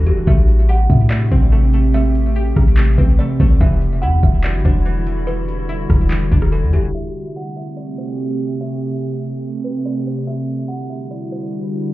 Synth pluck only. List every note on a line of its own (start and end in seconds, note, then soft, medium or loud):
0.00 0.28 D4 medium
0.00 0.27 E4 medium
0.06 0.27 E3 medium
0.27 1.09 A3 loud
0.69 1.94 G4 medium
1.11 1.51 A3 loud
1.32 2.57 C4 medium
1.52 1.72 A3 medium
1.74 1.93 A3 medium
1.94 2.77 A3 loud
2.36 3.61 G4 medium
2.78 3.19 A3 loud
2.99 3.61 C4 medium
3.20 3.39 A3 medium
3.40 3.61 A3 medium
3.61 4.43 E3 loud
4.03 5.28 E4 medium
4.44 4.84 E3 medium
4.65 5.90 D4 medium
4.86 5.06 E3 medium
5.07 5.26 E3 medium
5.27 6.10 E3 medium
5.69 6.94 E4 medium
6.11 6.51 E3 medium
6.32 6.94 D4 medium
6.52 6.72 E3 medium
6.73 6.94 E3 medium